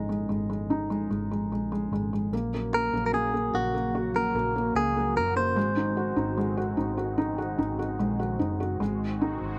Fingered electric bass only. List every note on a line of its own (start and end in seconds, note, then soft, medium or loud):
0.00 0.26 G#1 medium
0.30 1.07 G#1 medium
1.11 1.51 G#1 medium
1.51 1.89 A#1 medium
1.92 2.29 G#1 medium
2.32 2.89 A#1 medium
2.93 3.50 A#1 medium
3.54 4.31 A#1 medium
4.35 4.72 A#1 medium
4.75 5.17 C#2 medium
5.16 5.56 F#1 medium
5.56 6.13 G#1 medium
6.17 6.74 G#1 medium
6.78 7.55 G#1 medium
7.59 7.97 G#1 medium
7.99 8.37 A#1 medium
8.39 8.78 F#1 medium
8.80 9.37 G#1 medium
9.41 9.59 G#1 medium